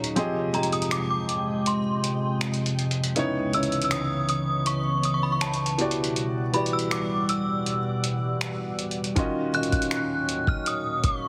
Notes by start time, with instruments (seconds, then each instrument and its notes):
Already playing: ambient pad D#2 A#2 F#3 D#4 C#5
0.04 closed hi-hat
0.16 ambient pad F2 C3 G#3 D#5 G5, grand piano F3 C4 G4 G#4 D#5, closed hi-hat
0.53 grand piano F3 C4 G4 G#4 D#5, synth bell A#5, closed hi-hat
0.63 closed hi-hat
0.73 synth bell D#6, closed hi-hat
0.82 closed hi-hat
0.91 synth bell D6, finger snap, closed hi-hat
1.10 synth bell D6
1.29 closed hi-hat
1.66 synth bell C6, closed hi-hat
2.04 closed hi-hat
2.41 finger snap, closed hi-hat
2.54 closed hi-hat
2.66 closed hi-hat
2.79 closed hi-hat
2.91 closed hi-hat
3.04 closed hi-hat
3.16 ambient pad C#2 C#3 E3 B3 C#5, grand piano C#3 B3 D#4 E4 C#5, closed hi-hat
3.53 grand piano C#3 B3 D#4 E4 C#5, synth bell E6, closed hi-hat
3.63 closed hi-hat
3.72 closed hi-hat
3.82 synth bell E6, closed hi-hat
3.91 synth bell D#6, finger snap, closed hi-hat
4.29 synth bell D#6, closed hi-hat
4.66 synth bell C#6, closed hi-hat
5.04 synth bell D#6, closed hi-hat
5.14 synth bell C#6
5.23 synth bell B5
5.32 synth bell C#6
5.41 synth bell A5, finger snap, closed hi-hat
5.54 closed hi-hat
5.66 closed hi-hat
5.78 ambient pad E2 B2 G3 D5 F#5, grand piano E3 B3 F#4 G4 D5, closed hi-hat
5.91 closed hi-hat
6.04 closed hi-hat
6.16 closed hi-hat
6.53 grand piano E3 B3 F#4 G4 D5, synth bell B5, closed hi-hat
6.66 closed hi-hat
6.73 synth bell E6
6.79 closed hi-hat
6.91 synth bell D6, finger snap, closed hi-hat
7.29 synth bell E6, closed hi-hat
7.66 closed hi-hat
8.04 closed hi-hat
8.41 finger snap, closed hi-hat
8.79 closed hi-hat
8.91 closed hi-hat
9.04 closed hi-hat
9.15 ambient pad D#2 A#2 F#3 D#4 C#5, grand piano D#3 C#4 F4 F#4 D#5, kick, closed hi-hat
9.53 grand piano D#3 C#4 F4 F#4 D#5, synth bell F#6, closed hi-hat
9.63 closed hi-hat
9.72 kick, closed hi-hat
9.82 closed hi-hat
9.91 finger snap, closed hi-hat
10.29 closed hi-hat
10.47 synth bell F6, kick
10.66 synth bell D#6, closed hi-hat
11.04 synth bell C#6, kick, closed hi-hat